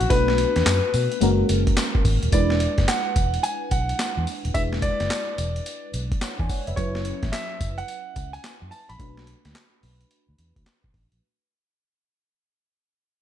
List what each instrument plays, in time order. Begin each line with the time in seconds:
Already playing: grand piano F#4
0.01 fingered electric bass A#1, closed hi-hat
0.10 fingered electric bass B1, fm electric piano A3 B3 D4 F#4 B4, grand piano B4, kick, closed hi-hat, tambourine
0.28 snare
0.38 closed hi-hat
0.56 fingered electric bass E2, snare, closed hi-hat
0.66 fingered electric bass F#2, snare, clap, closed hi-hat, tambourine
0.94 fingered electric bass B2, open hi-hat, tambourine
1.12 closed hi-hat
1.21 fingered electric bass F#1, fm electric piano G#3 A#3 C#4 F#4 A#4, closed hi-hat, tambourine
1.49 fingered electric bass F#1, closed hi-hat, tambourine
1.67 kick, closed hi-hat
1.77 snare, clap, closed hi-hat, tambourine
1.95 kick
2.05 fingered electric bass G#1, kick, open hi-hat, tambourine
2.23 fingered electric bass D#1, closed hi-hat
2.32 fingered electric bass E1, fm electric piano G#3 D4 E4 B4, grand piano D5, kick, closed hi-hat, tambourine
2.50 snare
2.60 closed hi-hat
2.78 fingered electric bass F#1, kick, snare, closed hi-hat
2.88 grand piano F#5, snare, clap, closed hi-hat, tambourine
3.16 fingered electric bass E1, kick, closed hi-hat, tambourine
3.34 closed hi-hat
3.43 grand piano G#5, closed hi-hat, tambourine
3.71 fingered electric bass B1, grand piano F#5, kick, closed hi-hat, tambourine
3.89 closed hi-hat
3.99 snare, clap, closed hi-hat, tambourine
4.17 fingered electric bass E2
4.27 open hi-hat, tambourine
4.45 fingered electric bass D#1, closed hi-hat
4.54 fingered electric bass E1, fm electric piano G#3 D4 E4 B4, grand piano E5, kick, closed hi-hat, tambourine
4.73 snare
4.82 grand piano D5, kick, closed hi-hat
5.00 fingered electric bass F#1, snare, closed hi-hat
5.10 snare, clap, closed hi-hat, tambourine
5.38 fingered electric bass E1, closed hi-hat, tambourine
5.56 closed hi-hat
5.66 closed hi-hat, tambourine
5.93 fingered electric bass B1, closed hi-hat, tambourine
6.12 kick, closed hi-hat
6.21 fm electric piano C#5 F#5, snare, clap, closed hi-hat, tambourine
6.39 fingered electric bass E2, fm electric piano D5 G#5, kick
6.49 fm electric piano C#5 F#5, kick, open hi-hat, tambourine
6.67 fingered electric bass F1, fm electric piano B4 E5, closed hi-hat
6.76 fingered electric bass F#1, fm electric piano F#3 C#4 E4 B4, grand piano C#5, kick, closed hi-hat, tambourine
6.95 snare
7.05 closed hi-hat
7.23 fingered electric bass A1, kick, snare, closed hi-hat
7.32 grand piano E5, snare, clap, closed hi-hat, tambourine
7.61 fingered electric bass F#1, kick, closed hi-hat, tambourine
7.78 grand piano F#5, closed hi-hat
7.88 closed hi-hat, tambourine
8.16 fingered electric bass C#2, kick, closed hi-hat, tambourine
8.33 grand piano G#5, closed hi-hat
8.44 snare, clap, closed hi-hat, tambourine
8.62 fingered electric bass F#2
8.71 grand piano A5, open hi-hat, tambourine
8.89 fingered electric bass A#1, grand piano B5, closed hi-hat
8.99 fingered electric bass B1, fm electric piano A3 D4 F#4 B4, kick, closed hi-hat
9.17 snare
9.27 closed hi-hat
9.45 fingered electric bass D2, snare, closed hi-hat
9.55 snare, clap, closed hi-hat
9.83 fingered electric bass B1, open hi-hat
10.01 closed hi-hat
10.11 closed hi-hat
10.29 fingered electric bass D2
10.38 fingered electric bass E2, closed hi-hat
10.56 fingered electric bass D2, kick, closed hi-hat
10.66 snare, clap, closed hi-hat
10.84 fingered electric bass B1, kick
10.94 fingered electric bass A1, kick, open hi-hat
11.12 fingered electric bass A#1, closed hi-hat